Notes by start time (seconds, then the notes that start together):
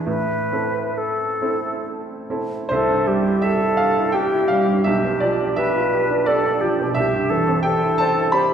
0.06 A2 B4
0.52 C4 E4 A4
0.98 A4
1.41 C4 E4 A4
2.30 C4 E4 A4
2.69 C2 A4 C5
2.89 G2
3.07 G3 G4
3.25 E4
3.42 G4 A4 E5
3.61 E4
3.77 G4 F5
3.97 E4
4.12 G4 G5
4.32 E4
4.48 G3 F5
4.68 G2
4.84 B1 G4 E5
5.05 B2
5.20 F3 D5
5.42 D4
5.56 G4 B4 E5
5.76 F4
5.94 G4
6.11 D4
6.26 G4 A4 D5
6.45 D4
6.61 F3 G4
6.80 B2
6.95 C2 G4 E5
7.13 G2
7.30 E3 A4
7.48 C4
7.63 G4 A4 G5
7.82 E4
7.98 C5 A5
8.18 E4
8.32 G4 C5 B5